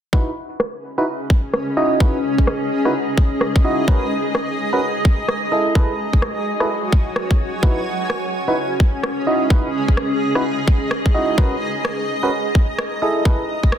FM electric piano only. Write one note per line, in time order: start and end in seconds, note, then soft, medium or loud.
0.13 0.31 D#4 medium
0.13 0.31 E4 medium
0.13 0.31 F#4 medium
0.13 0.31 B4 medium
0.98 1.05 D#4 medium
0.98 1.05 E4 medium
0.98 1.05 F#4 medium
0.98 1.05 B4 medium
1.77 1.98 D#4 medium
1.77 1.98 E4 medium
1.77 1.98 F#4 medium
1.77 1.98 D#5 medium
2.00 2.18 D#4 medium
2.00 2.18 E4 medium
2.00 2.18 F#4 medium
2.00 2.18 B4 medium
2.85 2.93 D#4 medium
2.85 2.93 E4 medium
2.85 2.93 F#4 medium
2.85 2.93 B4 medium
3.64 3.86 D#4 medium
3.64 3.86 E4 medium
3.64 3.86 F#4 medium
3.64 3.86 D#5 medium
3.88 4.06 C#4 medium
3.88 4.06 F#4 medium
3.88 4.06 A#4 medium
3.88 4.06 B4 medium
4.73 4.80 C#4 medium
4.73 4.80 F#4 medium
4.73 4.80 A#4 medium
4.73 4.80 B4 medium
5.52 5.73 E4 medium
5.52 5.73 G#4 medium
5.52 5.73 A4 medium
5.52 5.73 D#5 medium
5.75 5.93 E4 medium
5.75 5.93 G#4 medium
5.75 5.93 A4 medium
5.75 5.93 B4 medium
6.60 6.68 E4 medium
6.60 6.68 G#4 medium
6.60 6.68 A4 medium
6.60 6.68 B4 medium
7.63 7.81 D#4 medium
7.63 7.81 E4 medium
7.63 7.81 F#4 medium
7.63 7.81 B4 medium
8.48 8.55 D#4 medium
8.48 8.55 E4 medium
8.48 8.55 F#4 medium
8.48 8.55 B4 medium
9.27 9.48 D#4 medium
9.27 9.48 E4 medium
9.27 9.48 F#4 medium
9.27 9.48 D#5 medium
9.50 9.68 D#4 medium
9.50 9.68 E4 medium
9.50 9.68 F#4 medium
9.50 9.68 B4 medium
10.35 10.43 D#4 medium
10.35 10.43 E4 medium
10.35 10.43 F#4 medium
10.35 10.43 B4 medium
11.14 11.36 D#4 medium
11.14 11.36 E4 medium
11.14 11.36 F#4 medium
11.14 11.36 D#5 medium
11.38 11.56 C#4 medium
11.38 11.56 F#4 medium
11.38 11.56 A#4 medium
11.38 11.56 B4 medium
12.23 12.30 C#4 medium
12.23 12.30 F#4 medium
12.23 12.30 A#4 medium
12.23 12.30 B4 medium
13.02 13.23 E4 medium
13.02 13.23 G#4 medium
13.02 13.23 A4 medium
13.02 13.23 D#5 medium
13.25 13.43 E4 medium
13.25 13.43 G#4 medium
13.25 13.43 A4 medium
13.25 13.43 B4 medium